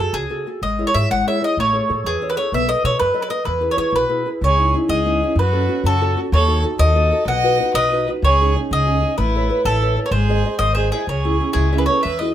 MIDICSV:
0, 0, Header, 1, 5, 480
1, 0, Start_track
1, 0, Key_signature, 4, "major"
1, 0, Tempo, 317125
1, 938, Time_signature, 6, 3, 24, 8
1, 6690, Key_signature, 4, "minor"
1, 18684, End_track
2, 0, Start_track
2, 0, Title_t, "Mandolin"
2, 0, Program_c, 0, 25
2, 0, Note_on_c, 0, 69, 81
2, 208, Note_on_c, 0, 68, 85
2, 219, Note_off_c, 0, 69, 0
2, 719, Note_off_c, 0, 68, 0
2, 948, Note_on_c, 0, 75, 73
2, 1312, Note_off_c, 0, 75, 0
2, 1318, Note_on_c, 0, 73, 77
2, 1429, Note_on_c, 0, 76, 87
2, 1435, Note_off_c, 0, 73, 0
2, 1649, Note_off_c, 0, 76, 0
2, 1680, Note_on_c, 0, 78, 85
2, 1925, Note_off_c, 0, 78, 0
2, 1934, Note_on_c, 0, 76, 66
2, 2142, Note_off_c, 0, 76, 0
2, 2183, Note_on_c, 0, 75, 78
2, 2385, Note_off_c, 0, 75, 0
2, 2421, Note_on_c, 0, 73, 78
2, 3124, Note_on_c, 0, 68, 80
2, 3140, Note_off_c, 0, 73, 0
2, 3451, Note_off_c, 0, 68, 0
2, 3475, Note_on_c, 0, 71, 72
2, 3580, Note_off_c, 0, 71, 0
2, 3588, Note_on_c, 0, 73, 77
2, 3805, Note_off_c, 0, 73, 0
2, 3849, Note_on_c, 0, 76, 67
2, 4062, Note_off_c, 0, 76, 0
2, 4067, Note_on_c, 0, 75, 85
2, 4282, Note_off_c, 0, 75, 0
2, 4314, Note_on_c, 0, 73, 94
2, 4527, Note_off_c, 0, 73, 0
2, 4533, Note_on_c, 0, 71, 90
2, 4863, Note_off_c, 0, 71, 0
2, 4879, Note_on_c, 0, 71, 68
2, 4991, Note_off_c, 0, 71, 0
2, 4997, Note_on_c, 0, 75, 72
2, 5218, Note_off_c, 0, 75, 0
2, 5226, Note_on_c, 0, 71, 64
2, 5607, Note_off_c, 0, 71, 0
2, 5620, Note_on_c, 0, 73, 67
2, 5706, Note_off_c, 0, 73, 0
2, 5724, Note_on_c, 0, 73, 78
2, 5968, Note_off_c, 0, 73, 0
2, 5988, Note_on_c, 0, 71, 78
2, 6487, Note_off_c, 0, 71, 0
2, 6720, Note_on_c, 0, 73, 68
2, 7162, Note_off_c, 0, 73, 0
2, 7408, Note_on_c, 0, 75, 91
2, 8085, Note_off_c, 0, 75, 0
2, 8159, Note_on_c, 0, 71, 68
2, 8871, Note_off_c, 0, 71, 0
2, 8877, Note_on_c, 0, 69, 93
2, 9360, Note_off_c, 0, 69, 0
2, 9589, Note_on_c, 0, 73, 64
2, 10020, Note_off_c, 0, 73, 0
2, 10283, Note_on_c, 0, 75, 107
2, 10950, Note_off_c, 0, 75, 0
2, 11020, Note_on_c, 0, 78, 74
2, 11687, Note_off_c, 0, 78, 0
2, 11731, Note_on_c, 0, 75, 108
2, 12242, Note_off_c, 0, 75, 0
2, 12480, Note_on_c, 0, 73, 72
2, 12927, Note_off_c, 0, 73, 0
2, 13211, Note_on_c, 0, 75, 96
2, 13868, Note_off_c, 0, 75, 0
2, 13891, Note_on_c, 0, 71, 72
2, 14558, Note_off_c, 0, 71, 0
2, 14614, Note_on_c, 0, 69, 102
2, 15112, Note_off_c, 0, 69, 0
2, 15223, Note_on_c, 0, 73, 59
2, 15305, Note_off_c, 0, 73, 0
2, 15311, Note_on_c, 0, 72, 69
2, 15978, Note_off_c, 0, 72, 0
2, 16024, Note_on_c, 0, 75, 103
2, 16260, Note_off_c, 0, 75, 0
2, 16266, Note_on_c, 0, 72, 73
2, 16489, Note_off_c, 0, 72, 0
2, 16527, Note_on_c, 0, 68, 68
2, 16738, Note_off_c, 0, 68, 0
2, 16786, Note_on_c, 0, 73, 58
2, 17456, Note_on_c, 0, 68, 91
2, 17677, Note_off_c, 0, 73, 0
2, 17806, Note_off_c, 0, 68, 0
2, 17835, Note_on_c, 0, 71, 61
2, 17944, Note_off_c, 0, 71, 0
2, 17950, Note_on_c, 0, 73, 72
2, 18178, Note_off_c, 0, 73, 0
2, 18206, Note_on_c, 0, 76, 59
2, 18435, Note_off_c, 0, 76, 0
2, 18448, Note_on_c, 0, 75, 63
2, 18676, Note_off_c, 0, 75, 0
2, 18684, End_track
3, 0, Start_track
3, 0, Title_t, "Nylon-string guitar"
3, 0, Program_c, 1, 24
3, 0, Note_on_c, 1, 66, 38
3, 0, Note_on_c, 1, 68, 40
3, 0, Note_on_c, 1, 69, 42
3, 211, Note_on_c, 1, 49, 52
3, 351, Note_off_c, 1, 66, 0
3, 356, Note_off_c, 1, 68, 0
3, 361, Note_off_c, 1, 69, 0
3, 447, Note_on_c, 1, 66, 44
3, 458, Note_on_c, 1, 69, 48
3, 467, Note_on_c, 1, 68, 47
3, 682, Note_off_c, 1, 66, 0
3, 684, Note_off_c, 1, 49, 0
3, 695, Note_off_c, 1, 68, 0
3, 700, Note_on_c, 1, 66, 34
3, 702, Note_off_c, 1, 69, 0
3, 713, Note_on_c, 1, 68, 40
3, 720, Note_on_c, 1, 69, 40
3, 892, Note_off_c, 1, 66, 0
3, 900, Note_off_c, 1, 68, 0
3, 904, Note_off_c, 1, 69, 0
3, 958, Note_on_c, 1, 56, 58
3, 1192, Note_on_c, 1, 64, 49
3, 1198, Note_on_c, 1, 73, 47
3, 1201, Note_on_c, 1, 68, 38
3, 1402, Note_off_c, 1, 64, 0
3, 1413, Note_off_c, 1, 68, 0
3, 1415, Note_off_c, 1, 73, 0
3, 1420, Note_on_c, 1, 64, 44
3, 1422, Note_off_c, 1, 56, 0
3, 1429, Note_on_c, 1, 68, 38
3, 1438, Note_on_c, 1, 73, 44
3, 1668, Note_on_c, 1, 56, 59
3, 1809, Note_off_c, 1, 64, 0
3, 1816, Note_off_c, 1, 68, 0
3, 1817, Note_off_c, 1, 73, 0
3, 1913, Note_on_c, 1, 64, 46
3, 1923, Note_on_c, 1, 68, 45
3, 1930, Note_on_c, 1, 73, 57
3, 2121, Note_off_c, 1, 73, 0
3, 2124, Note_off_c, 1, 64, 0
3, 2131, Note_off_c, 1, 68, 0
3, 2133, Note_off_c, 1, 56, 0
3, 2141, Note_on_c, 1, 64, 41
3, 2142, Note_on_c, 1, 73, 44
3, 2149, Note_on_c, 1, 68, 39
3, 2330, Note_off_c, 1, 73, 0
3, 2332, Note_off_c, 1, 64, 0
3, 2336, Note_off_c, 1, 68, 0
3, 2392, Note_on_c, 1, 57, 60
3, 2619, Note_on_c, 1, 68, 53
3, 2625, Note_on_c, 1, 69, 42
3, 2643, Note_on_c, 1, 73, 52
3, 2847, Note_off_c, 1, 68, 0
3, 2850, Note_off_c, 1, 69, 0
3, 2853, Note_off_c, 1, 57, 0
3, 2858, Note_off_c, 1, 73, 0
3, 2864, Note_on_c, 1, 68, 39
3, 2872, Note_on_c, 1, 69, 40
3, 2876, Note_on_c, 1, 73, 42
3, 3126, Note_on_c, 1, 52, 64
3, 3250, Note_off_c, 1, 68, 0
3, 3252, Note_off_c, 1, 69, 0
3, 3257, Note_off_c, 1, 73, 0
3, 3354, Note_on_c, 1, 68, 49
3, 3361, Note_on_c, 1, 69, 45
3, 3371, Note_on_c, 1, 73, 54
3, 3561, Note_off_c, 1, 68, 0
3, 3573, Note_off_c, 1, 69, 0
3, 3576, Note_off_c, 1, 73, 0
3, 3579, Note_on_c, 1, 68, 46
3, 3581, Note_off_c, 1, 52, 0
3, 3590, Note_on_c, 1, 69, 39
3, 3596, Note_on_c, 1, 73, 43
3, 3769, Note_off_c, 1, 68, 0
3, 3776, Note_off_c, 1, 69, 0
3, 3778, Note_off_c, 1, 73, 0
3, 3833, Note_on_c, 1, 59, 72
3, 4057, Note_on_c, 1, 69, 44
3, 4058, Note_off_c, 1, 59, 0
3, 4064, Note_on_c, 1, 71, 46
3, 4071, Note_on_c, 1, 75, 53
3, 4278, Note_off_c, 1, 69, 0
3, 4291, Note_off_c, 1, 75, 0
3, 4295, Note_off_c, 1, 71, 0
3, 4296, Note_on_c, 1, 69, 41
3, 4311, Note_on_c, 1, 75, 54
3, 4312, Note_on_c, 1, 71, 40
3, 4537, Note_on_c, 1, 54, 65
3, 4674, Note_off_c, 1, 69, 0
3, 4682, Note_off_c, 1, 75, 0
3, 4685, Note_off_c, 1, 71, 0
3, 4748, Note_on_c, 1, 69, 51
3, 4751, Note_on_c, 1, 71, 46
3, 4758, Note_on_c, 1, 75, 60
3, 4967, Note_off_c, 1, 69, 0
3, 4979, Note_off_c, 1, 75, 0
3, 4980, Note_off_c, 1, 71, 0
3, 4985, Note_on_c, 1, 69, 36
3, 4992, Note_off_c, 1, 54, 0
3, 4997, Note_on_c, 1, 71, 39
3, 4999, Note_on_c, 1, 75, 47
3, 5180, Note_off_c, 1, 69, 0
3, 5187, Note_off_c, 1, 75, 0
3, 5188, Note_off_c, 1, 71, 0
3, 5214, Note_on_c, 1, 52, 61
3, 5457, Note_on_c, 1, 64, 45
3, 5467, Note_on_c, 1, 68, 44
3, 5474, Note_on_c, 1, 71, 51
3, 5686, Note_off_c, 1, 64, 0
3, 5692, Note_off_c, 1, 71, 0
3, 5694, Note_off_c, 1, 52, 0
3, 5694, Note_off_c, 1, 68, 0
3, 5704, Note_on_c, 1, 64, 45
3, 5711, Note_on_c, 1, 68, 34
3, 5714, Note_on_c, 1, 71, 45
3, 5928, Note_on_c, 1, 47, 58
3, 6102, Note_off_c, 1, 64, 0
3, 6105, Note_off_c, 1, 71, 0
3, 6107, Note_off_c, 1, 68, 0
3, 6185, Note_on_c, 1, 64, 47
3, 6192, Note_on_c, 1, 68, 39
3, 6199, Note_on_c, 1, 71, 57
3, 6419, Note_off_c, 1, 47, 0
3, 6423, Note_off_c, 1, 64, 0
3, 6429, Note_off_c, 1, 68, 0
3, 6441, Note_on_c, 1, 64, 41
3, 6445, Note_off_c, 1, 71, 0
3, 6447, Note_on_c, 1, 68, 38
3, 6463, Note_on_c, 1, 71, 40
3, 6637, Note_off_c, 1, 64, 0
3, 6641, Note_off_c, 1, 68, 0
3, 6650, Note_off_c, 1, 71, 0
3, 6690, Note_on_c, 1, 49, 61
3, 6911, Note_on_c, 1, 61, 52
3, 6914, Note_on_c, 1, 63, 45
3, 6923, Note_on_c, 1, 64, 55
3, 7147, Note_off_c, 1, 61, 0
3, 7157, Note_off_c, 1, 63, 0
3, 7157, Note_off_c, 1, 64, 0
3, 7165, Note_on_c, 1, 61, 37
3, 7166, Note_off_c, 1, 49, 0
3, 7174, Note_on_c, 1, 63, 41
3, 7177, Note_on_c, 1, 64, 48
3, 7392, Note_on_c, 1, 56, 64
3, 7561, Note_off_c, 1, 61, 0
3, 7567, Note_off_c, 1, 63, 0
3, 7567, Note_off_c, 1, 64, 0
3, 7652, Note_on_c, 1, 61, 48
3, 7658, Note_on_c, 1, 63, 54
3, 7664, Note_on_c, 1, 64, 60
3, 7876, Note_off_c, 1, 56, 0
3, 7897, Note_off_c, 1, 64, 0
3, 7898, Note_off_c, 1, 61, 0
3, 7900, Note_off_c, 1, 63, 0
3, 7913, Note_on_c, 1, 61, 44
3, 7921, Note_on_c, 1, 63, 39
3, 7924, Note_on_c, 1, 64, 46
3, 8101, Note_off_c, 1, 61, 0
3, 8101, Note_off_c, 1, 64, 0
3, 8103, Note_off_c, 1, 63, 0
3, 8152, Note_on_c, 1, 54, 68
3, 8364, Note_on_c, 1, 61, 49
3, 8374, Note_on_c, 1, 69, 58
3, 8379, Note_on_c, 1, 66, 44
3, 8583, Note_off_c, 1, 61, 0
3, 8585, Note_off_c, 1, 66, 0
3, 8597, Note_off_c, 1, 69, 0
3, 8600, Note_on_c, 1, 61, 54
3, 8606, Note_on_c, 1, 66, 38
3, 8611, Note_off_c, 1, 54, 0
3, 8616, Note_on_c, 1, 69, 48
3, 8856, Note_on_c, 1, 49, 75
3, 8987, Note_off_c, 1, 61, 0
3, 8989, Note_off_c, 1, 66, 0
3, 8996, Note_off_c, 1, 69, 0
3, 9102, Note_on_c, 1, 66, 49
3, 9103, Note_on_c, 1, 61, 51
3, 9111, Note_on_c, 1, 69, 62
3, 9314, Note_off_c, 1, 49, 0
3, 9316, Note_off_c, 1, 61, 0
3, 9318, Note_off_c, 1, 66, 0
3, 9328, Note_off_c, 1, 69, 0
3, 9332, Note_on_c, 1, 61, 46
3, 9338, Note_on_c, 1, 66, 45
3, 9346, Note_on_c, 1, 69, 54
3, 9518, Note_off_c, 1, 61, 0
3, 9519, Note_off_c, 1, 66, 0
3, 9525, Note_off_c, 1, 69, 0
3, 9588, Note_on_c, 1, 51, 60
3, 9809, Note_on_c, 1, 63, 53
3, 9809, Note_on_c, 1, 66, 50
3, 9818, Note_on_c, 1, 69, 53
3, 10020, Note_off_c, 1, 63, 0
3, 10035, Note_off_c, 1, 66, 0
3, 10038, Note_off_c, 1, 51, 0
3, 10038, Note_on_c, 1, 63, 53
3, 10039, Note_off_c, 1, 69, 0
3, 10051, Note_on_c, 1, 66, 46
3, 10063, Note_on_c, 1, 69, 51
3, 10265, Note_on_c, 1, 51, 66
3, 10423, Note_off_c, 1, 63, 0
3, 10433, Note_off_c, 1, 66, 0
3, 10435, Note_off_c, 1, 69, 0
3, 10517, Note_on_c, 1, 63, 55
3, 10524, Note_on_c, 1, 66, 53
3, 10532, Note_on_c, 1, 69, 65
3, 10738, Note_off_c, 1, 51, 0
3, 10750, Note_off_c, 1, 63, 0
3, 10754, Note_off_c, 1, 66, 0
3, 10767, Note_on_c, 1, 63, 43
3, 10770, Note_off_c, 1, 69, 0
3, 10776, Note_on_c, 1, 66, 36
3, 10788, Note_on_c, 1, 69, 43
3, 10955, Note_off_c, 1, 63, 0
3, 10957, Note_off_c, 1, 66, 0
3, 10966, Note_off_c, 1, 69, 0
3, 11008, Note_on_c, 1, 47, 68
3, 11249, Note_on_c, 1, 63, 47
3, 11258, Note_on_c, 1, 66, 53
3, 11267, Note_on_c, 1, 71, 59
3, 11476, Note_off_c, 1, 47, 0
3, 11483, Note_off_c, 1, 66, 0
3, 11486, Note_off_c, 1, 63, 0
3, 11494, Note_off_c, 1, 71, 0
3, 11500, Note_on_c, 1, 63, 50
3, 11507, Note_on_c, 1, 66, 41
3, 11512, Note_on_c, 1, 71, 46
3, 11751, Note_on_c, 1, 54, 59
3, 11887, Note_off_c, 1, 66, 0
3, 11889, Note_off_c, 1, 63, 0
3, 11894, Note_off_c, 1, 71, 0
3, 11985, Note_on_c, 1, 63, 53
3, 11993, Note_on_c, 1, 66, 46
3, 11996, Note_on_c, 1, 71, 52
3, 12216, Note_off_c, 1, 54, 0
3, 12217, Note_off_c, 1, 66, 0
3, 12219, Note_off_c, 1, 63, 0
3, 12225, Note_off_c, 1, 71, 0
3, 12237, Note_on_c, 1, 63, 44
3, 12239, Note_on_c, 1, 66, 41
3, 12243, Note_on_c, 1, 71, 44
3, 12421, Note_off_c, 1, 66, 0
3, 12423, Note_off_c, 1, 63, 0
3, 12426, Note_off_c, 1, 71, 0
3, 12493, Note_on_c, 1, 49, 62
3, 12722, Note_on_c, 1, 61, 57
3, 12731, Note_on_c, 1, 63, 42
3, 12738, Note_on_c, 1, 68, 58
3, 12937, Note_off_c, 1, 63, 0
3, 12944, Note_off_c, 1, 61, 0
3, 12953, Note_off_c, 1, 49, 0
3, 12953, Note_off_c, 1, 68, 0
3, 12955, Note_on_c, 1, 63, 41
3, 12962, Note_on_c, 1, 61, 43
3, 12971, Note_on_c, 1, 68, 42
3, 13183, Note_on_c, 1, 56, 53
3, 13342, Note_off_c, 1, 63, 0
3, 13346, Note_off_c, 1, 61, 0
3, 13351, Note_off_c, 1, 68, 0
3, 13412, Note_on_c, 1, 61, 55
3, 13418, Note_on_c, 1, 63, 42
3, 13427, Note_on_c, 1, 68, 55
3, 13633, Note_off_c, 1, 61, 0
3, 13637, Note_off_c, 1, 63, 0
3, 13654, Note_off_c, 1, 56, 0
3, 13654, Note_off_c, 1, 68, 0
3, 13890, Note_on_c, 1, 57, 64
3, 14158, Note_on_c, 1, 71, 49
3, 14159, Note_on_c, 1, 69, 53
3, 14172, Note_on_c, 1, 73, 50
3, 14356, Note_off_c, 1, 69, 0
3, 14360, Note_off_c, 1, 57, 0
3, 14362, Note_off_c, 1, 71, 0
3, 14366, Note_off_c, 1, 73, 0
3, 14371, Note_on_c, 1, 69, 44
3, 14384, Note_on_c, 1, 73, 49
3, 14386, Note_on_c, 1, 71, 41
3, 14633, Note_on_c, 1, 52, 59
3, 14758, Note_off_c, 1, 69, 0
3, 14762, Note_off_c, 1, 71, 0
3, 14764, Note_off_c, 1, 73, 0
3, 14861, Note_on_c, 1, 69, 56
3, 14865, Note_on_c, 1, 71, 51
3, 14876, Note_on_c, 1, 73, 52
3, 15066, Note_off_c, 1, 69, 0
3, 15073, Note_off_c, 1, 71, 0
3, 15077, Note_off_c, 1, 73, 0
3, 15084, Note_on_c, 1, 69, 44
3, 15086, Note_off_c, 1, 52, 0
3, 15090, Note_on_c, 1, 71, 37
3, 15097, Note_on_c, 1, 73, 41
3, 15274, Note_off_c, 1, 69, 0
3, 15278, Note_off_c, 1, 71, 0
3, 15281, Note_off_c, 1, 73, 0
3, 15320, Note_on_c, 1, 56, 74
3, 15577, Note_on_c, 1, 68, 52
3, 15583, Note_on_c, 1, 72, 49
3, 15589, Note_on_c, 1, 75, 55
3, 15784, Note_off_c, 1, 56, 0
3, 15800, Note_off_c, 1, 68, 0
3, 15803, Note_off_c, 1, 72, 0
3, 15813, Note_off_c, 1, 75, 0
3, 15815, Note_on_c, 1, 68, 48
3, 15826, Note_on_c, 1, 72, 43
3, 15831, Note_on_c, 1, 75, 53
3, 16052, Note_on_c, 1, 51, 75
3, 16192, Note_off_c, 1, 68, 0
3, 16194, Note_off_c, 1, 72, 0
3, 16200, Note_off_c, 1, 75, 0
3, 16296, Note_on_c, 1, 68, 61
3, 16302, Note_on_c, 1, 72, 50
3, 16313, Note_on_c, 1, 75, 55
3, 16505, Note_off_c, 1, 51, 0
3, 16523, Note_off_c, 1, 68, 0
3, 16528, Note_off_c, 1, 72, 0
3, 16537, Note_off_c, 1, 75, 0
3, 16540, Note_on_c, 1, 68, 45
3, 16548, Note_on_c, 1, 72, 34
3, 16555, Note_on_c, 1, 75, 48
3, 16716, Note_off_c, 1, 68, 0
3, 16719, Note_off_c, 1, 72, 0
3, 16725, Note_off_c, 1, 75, 0
3, 16782, Note_on_c, 1, 49, 64
3, 17020, Note_on_c, 1, 61, 47
3, 17025, Note_on_c, 1, 68, 57
3, 17027, Note_on_c, 1, 64, 53
3, 17232, Note_off_c, 1, 49, 0
3, 17240, Note_off_c, 1, 64, 0
3, 17242, Note_off_c, 1, 68, 0
3, 17243, Note_off_c, 1, 61, 0
3, 17259, Note_on_c, 1, 61, 42
3, 17260, Note_on_c, 1, 64, 44
3, 17264, Note_on_c, 1, 68, 47
3, 17499, Note_on_c, 1, 56, 57
3, 17638, Note_off_c, 1, 64, 0
3, 17639, Note_off_c, 1, 61, 0
3, 17639, Note_off_c, 1, 68, 0
3, 17748, Note_on_c, 1, 61, 54
3, 17751, Note_on_c, 1, 76, 68
3, 17759, Note_on_c, 1, 64, 39
3, 17768, Note_on_c, 1, 68, 52
3, 17959, Note_off_c, 1, 76, 0
3, 17960, Note_off_c, 1, 56, 0
3, 17978, Note_off_c, 1, 61, 0
3, 17983, Note_off_c, 1, 64, 0
3, 17989, Note_off_c, 1, 68, 0
3, 17994, Note_on_c, 1, 61, 45
3, 18001, Note_on_c, 1, 71, 59
3, 18007, Note_on_c, 1, 64, 37
3, 18007, Note_on_c, 1, 68, 44
3, 18174, Note_off_c, 1, 61, 0
3, 18177, Note_off_c, 1, 64, 0
3, 18180, Note_off_c, 1, 68, 0
3, 18205, Note_off_c, 1, 71, 0
3, 18237, Note_on_c, 1, 52, 58
3, 18469, Note_on_c, 1, 66, 46
3, 18477, Note_on_c, 1, 64, 50
3, 18485, Note_on_c, 1, 68, 52
3, 18684, Note_off_c, 1, 52, 0
3, 18684, Note_off_c, 1, 64, 0
3, 18684, Note_off_c, 1, 66, 0
3, 18684, Note_off_c, 1, 68, 0
3, 18684, End_track
4, 0, Start_track
4, 0, Title_t, "Violin"
4, 0, Program_c, 2, 40
4, 6749, Note_on_c, 2, 68, 71
4, 7177, Note_off_c, 2, 68, 0
4, 7429, Note_on_c, 2, 68, 59
4, 8096, Note_off_c, 2, 68, 0
4, 8164, Note_on_c, 2, 66, 73
4, 8815, Note_off_c, 2, 66, 0
4, 8889, Note_on_c, 2, 66, 71
4, 9367, Note_off_c, 2, 66, 0
4, 9589, Note_on_c, 2, 69, 93
4, 10020, Note_off_c, 2, 69, 0
4, 10321, Note_on_c, 2, 69, 71
4, 10970, Note_off_c, 2, 69, 0
4, 11000, Note_on_c, 2, 75, 101
4, 11676, Note_off_c, 2, 75, 0
4, 11710, Note_on_c, 2, 71, 80
4, 12230, Note_off_c, 2, 71, 0
4, 12485, Note_on_c, 2, 68, 86
4, 12929, Note_off_c, 2, 68, 0
4, 13194, Note_on_c, 2, 68, 67
4, 13859, Note_off_c, 2, 68, 0
4, 13894, Note_on_c, 2, 64, 72
4, 14560, Note_off_c, 2, 64, 0
4, 14621, Note_on_c, 2, 64, 62
4, 15115, Note_off_c, 2, 64, 0
4, 15250, Note_on_c, 2, 69, 52
4, 15314, Note_off_c, 2, 69, 0
4, 15323, Note_on_c, 2, 68, 78
4, 15984, Note_off_c, 2, 68, 0
4, 16046, Note_on_c, 2, 72, 63
4, 16266, Note_off_c, 2, 72, 0
4, 16275, Note_on_c, 2, 68, 63
4, 16494, Note_off_c, 2, 68, 0
4, 16527, Note_on_c, 2, 64, 57
4, 16738, Note_off_c, 2, 64, 0
4, 16769, Note_on_c, 2, 68, 60
4, 17429, Note_off_c, 2, 68, 0
4, 17460, Note_on_c, 2, 64, 64
4, 17808, Note_off_c, 2, 64, 0
4, 17828, Note_on_c, 2, 68, 53
4, 17945, Note_off_c, 2, 68, 0
4, 17959, Note_on_c, 2, 69, 61
4, 18183, Note_off_c, 2, 69, 0
4, 18199, Note_on_c, 2, 71, 79
4, 18424, Note_off_c, 2, 71, 0
4, 18433, Note_on_c, 2, 71, 68
4, 18663, Note_off_c, 2, 71, 0
4, 18684, End_track
5, 0, Start_track
5, 0, Title_t, "Upright bass"
5, 0, Program_c, 3, 32
5, 196, Note_on_c, 3, 37, 71
5, 362, Note_off_c, 3, 37, 0
5, 935, Note_on_c, 3, 32, 69
5, 1253, Note_off_c, 3, 32, 0
5, 1432, Note_on_c, 3, 44, 68
5, 1585, Note_off_c, 3, 44, 0
5, 1676, Note_on_c, 3, 32, 74
5, 1831, Note_off_c, 3, 32, 0
5, 2380, Note_on_c, 3, 33, 78
5, 2693, Note_off_c, 3, 33, 0
5, 2874, Note_on_c, 3, 45, 80
5, 3024, Note_off_c, 3, 45, 0
5, 3094, Note_on_c, 3, 40, 78
5, 3255, Note_off_c, 3, 40, 0
5, 3818, Note_on_c, 3, 35, 88
5, 4128, Note_off_c, 3, 35, 0
5, 4300, Note_on_c, 3, 47, 86
5, 4449, Note_off_c, 3, 47, 0
5, 4555, Note_on_c, 3, 42, 68
5, 4703, Note_off_c, 3, 42, 0
5, 5249, Note_on_c, 3, 40, 88
5, 5560, Note_off_c, 3, 40, 0
5, 5717, Note_on_c, 3, 52, 67
5, 5874, Note_off_c, 3, 52, 0
5, 5941, Note_on_c, 3, 35, 70
5, 6109, Note_off_c, 3, 35, 0
5, 6680, Note_on_c, 3, 37, 83
5, 7158, Note_off_c, 3, 37, 0
5, 7401, Note_on_c, 3, 37, 74
5, 7876, Note_off_c, 3, 37, 0
5, 8106, Note_on_c, 3, 42, 96
5, 8580, Note_off_c, 3, 42, 0
5, 8835, Note_on_c, 3, 42, 89
5, 9300, Note_off_c, 3, 42, 0
5, 9570, Note_on_c, 3, 39, 108
5, 10031, Note_off_c, 3, 39, 0
5, 10281, Note_on_c, 3, 39, 89
5, 10747, Note_off_c, 3, 39, 0
5, 10982, Note_on_c, 3, 35, 92
5, 11460, Note_off_c, 3, 35, 0
5, 11719, Note_on_c, 3, 35, 79
5, 12198, Note_off_c, 3, 35, 0
5, 12447, Note_on_c, 3, 37, 97
5, 12925, Note_off_c, 3, 37, 0
5, 13183, Note_on_c, 3, 37, 90
5, 13651, Note_off_c, 3, 37, 0
5, 13895, Note_on_c, 3, 33, 88
5, 14360, Note_off_c, 3, 33, 0
5, 14605, Note_on_c, 3, 33, 87
5, 15070, Note_off_c, 3, 33, 0
5, 15306, Note_on_c, 3, 32, 97
5, 15773, Note_off_c, 3, 32, 0
5, 16031, Note_on_c, 3, 32, 81
5, 16494, Note_off_c, 3, 32, 0
5, 16759, Note_on_c, 3, 37, 85
5, 17224, Note_off_c, 3, 37, 0
5, 17477, Note_on_c, 3, 37, 82
5, 17950, Note_off_c, 3, 37, 0
5, 18239, Note_on_c, 3, 40, 84
5, 18544, Note_off_c, 3, 40, 0
5, 18684, End_track
0, 0, End_of_file